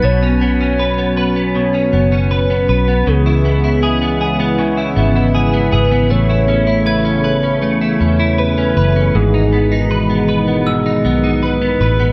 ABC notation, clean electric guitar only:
X:1
M:4/4
L:1/16
Q:1/4=79
K:Bmix
V:1 name="Clean electric guitar"
B,, C B, C B B, B B, B,, C B, C B B, B B, | C, E B, E G B, G B, C, E B, E G B, G B, | A, E C E B C B C A, E C E B C B C | G,, D B, D B B, B B, G,, D B, D B B, B B, |]